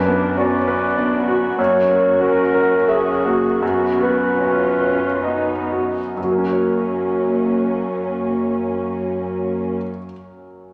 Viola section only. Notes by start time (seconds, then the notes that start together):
0.07 D4
0.38 B3 C#4
0.99 B3 D4
1.29 F#4
1.59 A#3
1.91 A#3
2.22 C#4
2.89 C#4
3.24 A#3
3.62 B3
4.41 C#4 F4
5.24 B3 D#4
6.17 A#3 C#4